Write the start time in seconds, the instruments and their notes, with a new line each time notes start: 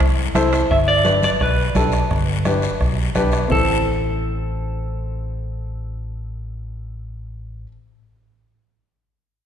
Already playing: clean electric guitar C5
0.00 fingered electric bass C2, bombo low, bombo rim, high timbale, long guiro
0.35 fingered electric bass C2, upright piano E4 A4 C5, bombo rim, high conga, high timbale, short guiro
0.53 bombo rim, high timbale, short guiro
0.71 fingered electric bass G1, clean electric guitar E5, bombo low, bombo rim, long guiro
0.88 clean electric guitar D5
1.04 upright piano D4 G4 B4, bombo rim, high conga, short guiro
1.23 clean electric guitar D5, bombo rim, high conga, short guiro
1.40 fingered electric bass B1, clean electric guitar B4, bombo low, bombo rim, long guiro
1.75 fingered electric bass B1, upright piano D4 G4 A4, bombo low, bombo rim, high conga, short guiro
1.92 bombo rim, short guiro
2.11 fingered electric bass G1, bombo low, bombo rim, long guiro
2.45 upright piano D4 G4 B4, bombo rim, high conga, short guiro
2.62 bombo rim, short guiro
2.80 fingered electric bass B1, bombo low, bombo rim, long guiro
3.15 fingered electric bass B1, upright piano D4 G4 B4, bombo low, bombo rim, high conga, short guiro
3.32 bombo rim, short guiro
3.48 fingered electric bass A1, upright piano C4 E4 A4, clean electric guitar A4, bombo low, low conga, long guiro